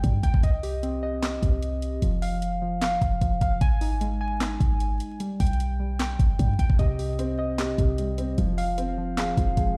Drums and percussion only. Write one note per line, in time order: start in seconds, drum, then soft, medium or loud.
0.04 kick medium
0.04 closed hi-hat medium
0.23 kick medium
0.23 closed hi-hat medium
0.34 kick loud
0.43 kick loud
0.43 closed hi-hat medium
0.63 open hi-hat medium
0.83 closed hi-hat medium
1.23 snare loud
1.23 clap medium
1.23 closed hi-hat medium
1.43 kick medium
1.43 closed hi-hat medium
1.62 closed hi-hat medium
1.82 closed hi-hat medium
2.02 closed hi-hat medium
2.22 open hi-hat medium
2.42 closed hi-hat medium
2.82 snare loud
2.82 clap medium
2.82 closed hi-hat medium
3.02 kick loud
3.02 closed hi-hat medium
3.21 kick medium
3.21 closed hi-hat medium
3.41 kick medium
3.41 closed hi-hat medium
3.61 kick loud
3.61 closed hi-hat medium
3.81 open hi-hat medium
4.01 closed hi-hat medium
4.40 snare loud
4.40 clap medium
4.40 closed hi-hat medium
4.60 kick loud
4.60 closed hi-hat medium
4.80 closed hi-hat medium
5.00 closed hi-hat medium
5.20 closed hi-hat medium
5.40 kick loud
5.40 closed hi-hat medium
5.40 open hi-hat medium
5.47 closed hi-hat medium
5.53 closed hi-hat soft
5.60 closed hi-hat medium
5.99 snare loud
5.99 clap medium
5.99 closed hi-hat medium
6.19 kick loud
6.19 closed hi-hat medium
6.39 kick medium
6.39 closed hi-hat medium
6.59 kick medium
6.59 closed hi-hat medium
6.70 kick loud
6.79 kick loud
6.79 closed hi-hat medium
6.99 open hi-hat medium
7.19 closed hi-hat medium
7.58 snare loud
7.58 clap medium
7.58 closed hi-hat medium
7.78 kick loud
7.78 closed hi-hat medium
7.98 closed hi-hat medium
8.18 closed hi-hat medium
8.38 closed hi-hat medium
8.58 open hi-hat medium
8.78 closed hi-hat medium
9.17 snare loud
9.17 clap medium
9.17 closed hi-hat medium
9.37 kick medium
9.37 closed hi-hat medium
9.57 kick medium
9.57 closed hi-hat medium